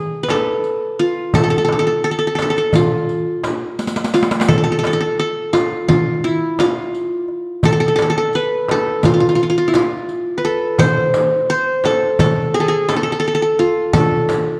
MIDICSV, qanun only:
0, 0, Header, 1, 2, 480
1, 0, Start_track
1, 0, Tempo, 700117
1, 917, Time_signature, 9, 3, 24, 8
1, 10009, End_track
2, 0, Start_track
2, 0, Title_t, "Qanun"
2, 0, Program_c, 0, 107
2, 0, Note_on_c, 0, 68, 93
2, 160, Note_on_c, 0, 71, 73
2, 207, Note_on_c, 0, 69, 91
2, 248, Note_off_c, 0, 68, 0
2, 682, Note_on_c, 0, 65, 79
2, 907, Note_off_c, 0, 71, 0
2, 921, Note_off_c, 0, 69, 0
2, 924, Note_on_c, 0, 69, 95
2, 982, Note_off_c, 0, 69, 0
2, 984, Note_on_c, 0, 69, 72
2, 1027, Note_off_c, 0, 69, 0
2, 1030, Note_on_c, 0, 69, 80
2, 1080, Note_off_c, 0, 69, 0
2, 1083, Note_on_c, 0, 69, 70
2, 1125, Note_off_c, 0, 69, 0
2, 1128, Note_on_c, 0, 69, 77
2, 1179, Note_off_c, 0, 69, 0
2, 1182, Note_on_c, 0, 69, 64
2, 1225, Note_off_c, 0, 69, 0
2, 1227, Note_on_c, 0, 69, 76
2, 1278, Note_off_c, 0, 69, 0
2, 1281, Note_on_c, 0, 69, 68
2, 1397, Note_off_c, 0, 69, 0
2, 1399, Note_on_c, 0, 69, 79
2, 1446, Note_off_c, 0, 69, 0
2, 1449, Note_on_c, 0, 69, 60
2, 1496, Note_off_c, 0, 69, 0
2, 1499, Note_on_c, 0, 69, 68
2, 1554, Note_off_c, 0, 69, 0
2, 1557, Note_on_c, 0, 69, 62
2, 1599, Note_off_c, 0, 65, 0
2, 1610, Note_off_c, 0, 69, 0
2, 1612, Note_on_c, 0, 69, 70
2, 1658, Note_off_c, 0, 69, 0
2, 1661, Note_on_c, 0, 69, 67
2, 1712, Note_off_c, 0, 69, 0
2, 1714, Note_on_c, 0, 69, 77
2, 1765, Note_off_c, 0, 69, 0
2, 1768, Note_on_c, 0, 69, 65
2, 1888, Note_on_c, 0, 65, 84
2, 2570, Note_off_c, 0, 69, 0
2, 2830, Note_off_c, 0, 65, 0
2, 2839, Note_on_c, 0, 65, 78
2, 3074, Note_on_c, 0, 69, 90
2, 3135, Note_off_c, 0, 69, 0
2, 3138, Note_on_c, 0, 69, 70
2, 3176, Note_off_c, 0, 69, 0
2, 3178, Note_on_c, 0, 69, 79
2, 3232, Note_off_c, 0, 69, 0
2, 3235, Note_on_c, 0, 69, 67
2, 3279, Note_off_c, 0, 69, 0
2, 3282, Note_on_c, 0, 69, 79
2, 3334, Note_off_c, 0, 69, 0
2, 3337, Note_on_c, 0, 69, 68
2, 3378, Note_off_c, 0, 69, 0
2, 3380, Note_on_c, 0, 69, 77
2, 3429, Note_off_c, 0, 69, 0
2, 3431, Note_on_c, 0, 69, 68
2, 3559, Note_off_c, 0, 69, 0
2, 3561, Note_on_c, 0, 69, 86
2, 3756, Note_off_c, 0, 65, 0
2, 3792, Note_on_c, 0, 65, 84
2, 4032, Note_off_c, 0, 65, 0
2, 4034, Note_on_c, 0, 65, 90
2, 4279, Note_on_c, 0, 64, 80
2, 4320, Note_off_c, 0, 65, 0
2, 4364, Note_off_c, 0, 69, 0
2, 4523, Note_on_c, 0, 65, 88
2, 4564, Note_off_c, 0, 64, 0
2, 5247, Note_on_c, 0, 69, 99
2, 5294, Note_off_c, 0, 69, 0
2, 5297, Note_on_c, 0, 69, 75
2, 5346, Note_off_c, 0, 69, 0
2, 5349, Note_on_c, 0, 69, 84
2, 5399, Note_off_c, 0, 69, 0
2, 5402, Note_on_c, 0, 69, 69
2, 5440, Note_off_c, 0, 65, 0
2, 5452, Note_off_c, 0, 69, 0
2, 5455, Note_on_c, 0, 69, 83
2, 5497, Note_off_c, 0, 69, 0
2, 5500, Note_on_c, 0, 69, 71
2, 5549, Note_off_c, 0, 69, 0
2, 5552, Note_on_c, 0, 69, 81
2, 5603, Note_off_c, 0, 69, 0
2, 5606, Note_on_c, 0, 69, 72
2, 5725, Note_on_c, 0, 71, 90
2, 5970, Note_off_c, 0, 69, 0
2, 5973, Note_on_c, 0, 69, 94
2, 6206, Note_on_c, 0, 65, 89
2, 6262, Note_off_c, 0, 65, 0
2, 6265, Note_on_c, 0, 65, 68
2, 6306, Note_off_c, 0, 65, 0
2, 6309, Note_on_c, 0, 65, 73
2, 6365, Note_off_c, 0, 65, 0
2, 6368, Note_on_c, 0, 65, 66
2, 6410, Note_off_c, 0, 65, 0
2, 6412, Note_on_c, 0, 65, 73
2, 6461, Note_off_c, 0, 65, 0
2, 6464, Note_on_c, 0, 65, 64
2, 6473, Note_off_c, 0, 71, 0
2, 6508, Note_off_c, 0, 65, 0
2, 6511, Note_on_c, 0, 65, 77
2, 6564, Note_off_c, 0, 65, 0
2, 6566, Note_on_c, 0, 65, 73
2, 6635, Note_on_c, 0, 64, 71
2, 6676, Note_off_c, 0, 65, 0
2, 6685, Note_on_c, 0, 65, 88
2, 6727, Note_off_c, 0, 64, 0
2, 6775, Note_off_c, 0, 69, 0
2, 7114, Note_on_c, 0, 71, 67
2, 7162, Note_on_c, 0, 69, 89
2, 7400, Note_on_c, 0, 72, 110
2, 7441, Note_off_c, 0, 71, 0
2, 7602, Note_off_c, 0, 65, 0
2, 7880, Note_off_c, 0, 72, 0
2, 7883, Note_on_c, 0, 72, 97
2, 7964, Note_off_c, 0, 69, 0
2, 8127, Note_on_c, 0, 69, 93
2, 8360, Note_off_c, 0, 69, 0
2, 8363, Note_on_c, 0, 69, 95
2, 8600, Note_on_c, 0, 68, 88
2, 8608, Note_off_c, 0, 72, 0
2, 8637, Note_off_c, 0, 69, 0
2, 8640, Note_on_c, 0, 69, 78
2, 8681, Note_off_c, 0, 68, 0
2, 8695, Note_on_c, 0, 68, 83
2, 8736, Note_off_c, 0, 69, 0
2, 8835, Note_on_c, 0, 69, 85
2, 8876, Note_off_c, 0, 68, 0
2, 8886, Note_off_c, 0, 69, 0
2, 8888, Note_on_c, 0, 69, 66
2, 8932, Note_off_c, 0, 69, 0
2, 8934, Note_on_c, 0, 69, 74
2, 8993, Note_off_c, 0, 69, 0
2, 8996, Note_on_c, 0, 69, 66
2, 9045, Note_off_c, 0, 69, 0
2, 9048, Note_on_c, 0, 69, 76
2, 9099, Note_off_c, 0, 69, 0
2, 9102, Note_on_c, 0, 69, 70
2, 9148, Note_off_c, 0, 69, 0
2, 9151, Note_on_c, 0, 69, 80
2, 9200, Note_off_c, 0, 69, 0
2, 9203, Note_on_c, 0, 69, 66
2, 9319, Note_on_c, 0, 65, 84
2, 9550, Note_off_c, 0, 69, 0
2, 9553, Note_on_c, 0, 69, 102
2, 10009, Note_off_c, 0, 65, 0
2, 10009, Note_off_c, 0, 69, 0
2, 10009, End_track
0, 0, End_of_file